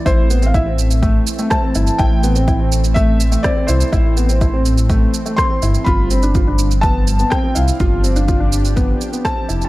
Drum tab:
SH |x-xxx-xxx-xxx-xx|x-xxx-xxx-xxx-xx|x-xxx-xxx-xxx-xx|x-xxx-xxx-xxx-xx|
SD |------------r---|------------r---|------------r---|------------r---|
BD |o---o---o---o---|o---o---o---o---|o---o---o---o---|o---o---o---o---|

SH |x-xxx-xxx-xxx-xx|
SD |------------r---|
BD |o---o---o---o---|